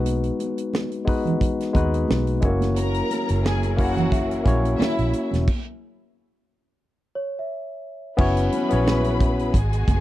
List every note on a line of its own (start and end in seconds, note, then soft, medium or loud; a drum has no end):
0.00 0.30 B1 medium
0.00 0.80 G#3 medium
0.00 0.80 B3 medium
0.00 0.81 D#4 medium
0.00 0.81 F#4 medium
0.00 0.82 B4 medium
0.06 closed hi-hat medium
0.24 closed hi-hat medium
0.40 closed hi-hat medium
0.40 muted conga soft
0.58 closed hi-hat medium
0.73 snare loud
0.73 high conga medium
0.91 closed hi-hat soft
1.05 1.61 G#3 medium
1.05 1.61 B3 medium
1.05 1.62 D#4 medium
1.05 1.62 F#4 medium
1.05 kick medium
1.05 open hi-hat medium
1.09 1.63 B4 medium
1.25 closed hi-hat soft
1.25 low conga medium
1.41 kick medium
1.41 closed hi-hat medium
1.60 snare soft
1.60 closed hi-hat soft
1.73 2.04 D#2 medium
1.73 2.29 G#3 medium
1.73 2.29 B3 medium
1.73 2.29 D#4 medium
1.73 2.30 F#4 medium
1.73 2.31 B4 medium
1.73 kick medium
1.73 closed hi-hat medium
1.73 muted conga soft
1.94 closed hi-hat medium
2.08 2.39 B1 medium
2.08 snare loud
2.08 high conga medium
2.27 closed hi-hat medium
2.41 3.01 F#1 medium
2.41 2.49 G#3 medium
2.41 3.51 C#4 medium
2.41 3.52 E4 medium
2.41 3.52 F#4 medium
2.41 3.59 A#4 medium
2.41 3.53 C#5 medium
2.41 kick loud
2.41 closed hi-hat medium
2.47 3.54 A#3 medium
2.61 snare soft
2.61 closed hi-hat medium
2.61 high conga medium
2.76 5.45 F#3 medium
2.76 5.45 C#4 medium
2.76 5.45 E4 medium
2.76 5.45 G#4 medium
2.76 5.45 A#4 medium
2.76 3.41 A#4 loud
2.76 3.41 A#5 loud
2.76 closed hi-hat loud
2.76 muted conga soft
2.94 closed hi-hat medium
3.11 closed hi-hat medium
3.11 muted conga soft
3.29 4.43 F#1 medium
3.29 closed hi-hat medium
3.45 3.72 G#4 medium
3.45 3.72 G#5 loud
3.45 snare loud
3.45 high conga medium
3.63 closed hi-hat soft
3.77 4.32 A#3 medium
3.77 4.33 C#4 medium
3.77 4.33 E4 medium
3.77 4.42 F#4 loud
3.77 4.34 F#4 medium
3.77 4.34 C#5 medium
3.77 4.42 F#5 loud
3.77 kick medium
3.77 open hi-hat medium
3.97 closed hi-hat soft
3.97 low conga medium
4.12 5.28 E5 medium
4.12 kick medium
4.12 closed hi-hat medium
4.31 closed hi-hat medium
4.44 4.75 A#1 medium
4.44 5.26 A#3 medium
4.44 5.27 C#4 medium
4.44 5.27 E4 medium
4.44 5.28 F#4 medium
4.44 kick medium
4.44 closed hi-hat medium
4.44 muted conga medium
4.48 5.28 C#5 medium
4.65 closed hi-hat medium
4.79 5.28 E4 loud
4.79 5.28 E5 loud
4.79 muted fingered electric bass stroke soft
4.79 snare loud
4.79 high conga medium
4.98 5.12 A#1 medium
4.98 closed hi-hat soft
5.13 closed hi-hat medium
5.31 5.46 E1 medium
5.31 snare soft
5.31 closed hi-hat soft
5.31 high conga medium
5.48 kick loud
5.48 crash medium
7.15 8.32 C#5 medium
7.39 8.16 E5 medium
8.17 8.48 F#1 loud
8.17 9.53 F#3 medium
8.17 8.59 B3 loud
8.17 8.59 C#4 loud
8.17 9.53 C#4 medium
8.17 8.59 E4 medium
8.17 9.53 E4 medium
8.17 8.60 F#4 medium
8.17 9.53 G#4 medium
8.17 9.51 B4 medium
8.17 9.53 B4 medium
8.17 9.34 E5 medium
8.17 9.52 B5 medium
8.17 kick loud
8.17 crash loud
8.21 8.61 C#5 loud
8.37 closed hi-hat medium
8.52 closed hi-hat medium
8.52 muted conga soft
8.69 9.51 A#1 medium
8.69 9.53 B3 medium
8.69 9.54 C#4 medium
8.69 9.54 E4 medium
8.69 9.55 F#4 medium
8.69 closed hi-hat medium
8.73 9.55 C#5 medium
8.87 snare loud
8.87 high conga medium
9.04 closed hi-hat soft
9.21 kick medium
9.21 closed hi-hat medium
9.39 closed hi-hat soft
9.54 9.83 G#1 loud
9.54 10.00 G#3 medium
9.54 10.00 B3 medium
9.54 10.00 F#4 medium
9.54 10.00 G#4 medium
9.54 10.00 G#5 medium
9.54 kick medium
9.54 closed hi-hat medium
9.73 closed hi-hat medium
9.88 10.00 F#1 medium
9.88 kick medium
9.88 closed hi-hat medium
9.88 muted conga medium